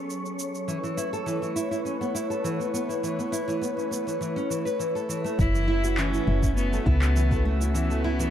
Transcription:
Already playing: F#3 B3 C#4 G#4 A4 C#5
0.10 shaker
0.26 shaker
0.39 shaker
0.55 shaker
0.68 E3 A3 E4 B4 C#5, shaker
0.83 E3, shaker
0.97 E4, shaker
1.13 A4, shaker
1.26 E3, shaker
1.42 E3, shaker
1.56 E4, shaker
1.71 E4, shaker
1.85 C#4, shaker
2.01 B3, shaker
2.15 E4, shaker
2.30 A4, shaker
2.44 E3, shaker
2.60 B3, shaker
2.74 B3, shaker
2.89 E4, shaker
3.03 E3, shaker
3.19 B3, shaker
3.32 E4, shaker
3.48 E3, shaker
3.61 B3, shaker
3.77 C#4, shaker
3.91 B3, shaker
4.07 E3, shaker
4.21 E3, shaker
4.36 C#4, shaker
4.50 E3, shaker
4.65 B4, shaker
4.79 E3, shaker
4.95 A4, shaker
5.09 E3, shaker
5.24 A3, shaker
5.39 F#1 E3 A3 C#4 E4 F#4 E5, kick, shaker
5.54 E3, shaker
5.68 E4
5.84 F#4, shaker
5.97 E3 C#4, clap, shaker
6.13 E3, shaker
6.27 F#1 E4
6.43 E4, kick, shaker
6.57 B3 C#4, shaker
6.73 A3, shaker
6.86 C#2 B3 E4, kick
7.02 F#4, clap, shaker
7.16 E3, shaker
7.31 A3, kick, shaker
7.45 A3
7.60 E4, shaker
7.74 E3 B3, shaker
7.90 A3, shaker
8.04 E4
8.19 E3, shaker

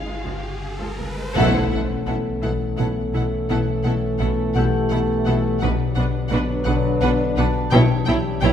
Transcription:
Already playing: G1 C#4 G4 G#4 F5 G5, riser
0.06 C#2 G#3
0.25 C#2 C#3 F3
0.62 C#4
0.80 C#2 F3
0.98 C#2 C#3 B3
1.17 C#2 G#3
1.34 B1 B2 E3 A3 C#4 E4 A4 F#5, impact
1.70 B1 B2 E4 A4 F#5
2.06 B1 B2 B3 E4 A4 F#5
2.42 B1 B2 E4 A4 F#5
2.77 B1 B2 B3 E4 A4 F#5
3.13 B1 B2 E4 A4 F#5
3.49 B1 B2 E4 A4 F#5
3.84 B1 B2 E4 A4 F#5
4.18 B1 B2 B3 E4 A4 F#5
4.54 B1 B2 E4 G4 A4 F#5
4.90 B1 B2 B3 E4 A4 F#5
5.25 B1 B2 E4 A4 F#5
5.60 B1 B2 D3 F#3 D4 B4 F#5
5.95 B1 B2 D4 B4 F#5
6.29 B1 B2 B3 D4 B4 F#5
6.65 B1 B2 D4 B4 F#5
7.01 B1 B2 B3 D4 B4 F#5
7.36 B1 B2 D4 B4 F#5 A5
7.70 B1 B2 E3 G3 C#4 E4 G4 C#5 G5
8.05 B1 B2 E4 C#5 G5
8.41 B1 B2 B3 E4 C#5 G5

